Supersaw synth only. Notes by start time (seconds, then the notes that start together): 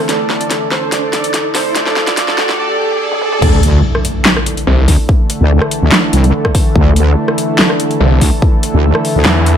0.09 A4 D5
0.71 A4 C5
0.92 A4 D5
1.55 A4 C5
1.76 A4 D5
2.17 A4 D5
2.59 A4 D5
2.80 A4 D5
3.00 A4 D5
3.21 A4 D5